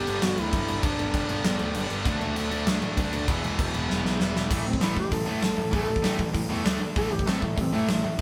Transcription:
Already playing: distorted electric guitar G2 D3 G3, duduk G4
0.06 picked electric bass G1, distorted electric guitar G2 D3 G3 B3 D4, crash
0.22 picked electric bass G1, duduk F#4, snare, crash
0.38 picked electric bass D2, duduk E4, crash
0.51 picked electric bass G1, distorted electric guitar G2 D3 G3 B3 D4, kick, crash
0.68 picked electric bass G1, crash
0.83 picked electric bass G1, distorted electric guitar G2 D3 G3 B3, duduk D4, kick, crash
0.87 distorted electric guitar D4
0.99 picked electric bass G1, crash
1.14 picked electric bass G1, kick, crash
1.28 picked electric bass G1, distorted electric guitar D3 G3 B3 D4, crash
1.32 distorted electric guitar G2
1.44 picked electric bass G1, snare, crash
1.59 picked electric bass D2, crash
1.75 picked electric bass G1, distorted electric guitar G2 D3 G3 B3 D4, crash
1.90 picked electric bass G1, crash
2.05 picked electric bass D2, distorted electric guitar D3 F#3 A3 D4, kick, crash
2.21 picked electric bass D2, crash
2.36 picked electric bass D2, crash
2.51 picked electric bass D2, distorted electric guitar D3 F#3 A3 D4, crash
2.66 picked electric bass D2, snare, crash
2.81 picked electric bass A2, crash
2.97 picked electric bass D2, distorted electric guitar D3 F#3 A3 D4, kick, crash
3.12 picked electric bass D2, crash
3.27 picked electric bass E1, distorted electric guitar E2 B2 E3 G#3 B3 E4, kick, crash
3.44 picked electric bass E1, crash
3.59 picked electric bass E1, kick, crash
3.73 picked electric bass E1, distorted electric guitar G#3 B3 E4, crash
3.77 distorted electric guitar E3
3.90 picked electric bass E1, snare
4.04 picked electric bass B1, snare
4.19 picked electric bass E1, distorted electric guitar E3 G#3 B3 E4, snare
4.36 picked electric bass E1, snare
4.51 picked electric bass A1, distorted electric guitar A2 E3 A3, kick, crash
4.66 picked electric bass A1, distorted electric guitar A2 E3, duduk C4
4.73 kick
4.81 picked electric bass A1, distorted electric guitar A2 E3 A3, duduk E4, snare, open hi-hat
4.96 picked electric bass A1, distorted electric guitar A2 E3, duduk G4, kick
5.12 picked electric bass A1, distorted electric guitar A2 E3, duduk A4, kick, open hi-hat
5.27 distorted electric guitar A2 E3 A3, picked electric bass A2
5.42 picked electric bass A1, distorted electric guitar A2 E3, duduk A4, snare, open hi-hat
5.58 distorted electric guitar A2 E3, picked electric bass A2
5.73 picked electric bass A1, distorted electric guitar A2 E3 A3, duduk A4, kick, open hi-hat
5.89 picked electric bass A1, distorted electric guitar A2 E3
5.96 kick
6.04 picked electric bass A1, distorted electric guitar A2 E3 A3, snare, open hi-hat
6.19 picked electric bass A1, distorted electric guitar A2 E3, kick
6.34 picked electric bass A1, distorted electric guitar A2 E3, kick, open hi-hat
6.50 picked electric bass E2, distorted electric guitar A2 E3 A3
6.65 picked electric bass D2, distorted electric guitar D3 A3 D4, snare, open hi-hat
6.80 picked electric bass D3, distorted electric guitar D3 A3
6.96 picked electric bass A1, distorted electric guitar A2 E3 A3, duduk A4, kick, open hi-hat
7.11 picked electric bass A1, distorted electric guitar A2 E3, duduk G4
7.19 kick
7.27 picked electric bass A1, distorted electric guitar A2 E3 A3, duduk C4, snare, open hi-hat
7.42 picked electric bass A1, distorted electric guitar A2 E3, duduk A3, kick
7.58 picked electric bass A1, distorted electric guitar A2 E3, duduk C4, kick, open hi-hat
7.72 distorted electric guitar A2 E3 A3, picked electric bass A2, duduk A3
7.88 picked electric bass A1, distorted electric guitar A2 E3, duduk A3, snare, open hi-hat
8.03 distorted electric guitar A2 E3, picked electric bass A2

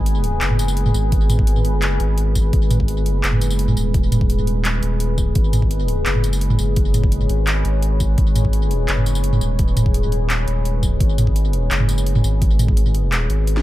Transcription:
Already playing: sub bass G#1, ambient pad G#3 G#4 B4 G#5
0.06 closed hi-hat
0.24 closed hi-hat
0.41 sub bass F#1, clap, closed hi-hat
0.50 mid tom
0.59 closed hi-hat, tambourine
0.68 tambourine
0.77 closed hi-hat
0.86 mid tom
0.94 sub bass G#1, tambourine
1.12 kick, closed hi-hat
1.30 closed hi-hat, mid tom, tambourine
1.39 kick
1.47 closed hi-hat
1.56 mid tom
1.65 sub bass G1, closed hi-hat
1.82 clap, closed hi-hat
2.00 sub bass G#1, closed hi-hat
2.18 closed hi-hat
2.35 kick, closed hi-hat, tambourine
2.53 sub bass G#1, kick, closed hi-hat
2.71 closed hi-hat, mid tom, tambourine
2.80 kick
2.88 closed hi-hat
2.96 ambient pad D#5
3.02 sub bass G1, closed hi-hat
3.24 sub bass F#1, clap, closed hi-hat
3.33 mid tom
3.41 closed hi-hat, tambourine
3.51 tambourine
3.59 closed hi-hat
3.68 mid tom
3.77 sub bass D#1, tambourine
3.94 kick, closed hi-hat
4.12 closed hi-hat, mid tom, tambourine
4.21 kick
4.30 closed hi-hat
4.39 mid tom
4.47 closed hi-hat
4.65 clap, closed hi-hat
4.83 sub bass D#1, closed hi-hat
4.90 ambient pad C#5
5.00 closed hi-hat
5.18 kick, tambourine
5.35 sub bass G#1, kick, closed hi-hat
5.53 closed hi-hat, mid tom, tambourine
5.62 kick
5.71 closed hi-hat
5.88 closed hi-hat
6.06 sub bass F#1, clap, closed hi-hat
6.15 mid tom
6.24 closed hi-hat, tambourine
6.33 tambourine
6.41 closed hi-hat
6.50 mid tom
6.59 sub bass F#1, tambourine
6.76 kick, closed hi-hat
6.94 closed hi-hat, mid tom, tambourine
7.04 kick
7.12 closed hi-hat
7.21 mid tom
7.29 sub bass G#1, closed hi-hat
7.47 clap, closed hi-hat
7.65 sub bass G#1, closed hi-hat
7.82 closed hi-hat
8.00 kick, closed hi-hat, tambourine
8.18 sub bass G#1, kick, closed hi-hat
8.36 closed hi-hat, mid tom, tambourine
8.45 kick
8.53 closed hi-hat
8.71 closed hi-hat
8.88 sub bass F#1, clap, closed hi-hat
8.98 mid tom
9.06 closed hi-hat, tambourine
9.15 tambourine
9.24 closed hi-hat
9.33 mid tom
9.41 sub bass D#1, tambourine
9.59 kick, closed hi-hat
9.77 closed hi-hat, mid tom, tambourine
9.86 kick
9.94 closed hi-hat
10.04 mid tom
10.12 closed hi-hat
10.30 clap, closed hi-hat
10.47 sub bass D#1, closed hi-hat
10.65 closed hi-hat
10.83 kick, tambourine
11.00 sub bass G#1, kick, closed hi-hat
11.18 closed hi-hat, mid tom, tambourine
11.27 kick
11.36 closed hi-hat
11.53 closed hi-hat
11.71 sub bass F#1, clap, closed hi-hat
11.80 mid tom
11.89 closed hi-hat, tambourine
11.98 tambourine
12.06 closed hi-hat
12.16 mid tom
12.24 sub bass G#1, tambourine
12.42 kick, closed hi-hat
12.59 closed hi-hat, mid tom, tambourine
12.68 kick
12.77 closed hi-hat
12.86 mid tom
12.95 closed hi-hat
13.12 clap, closed hi-hat
13.30 sub bass G#1, closed hi-hat
13.47 closed hi-hat
13.57 snare

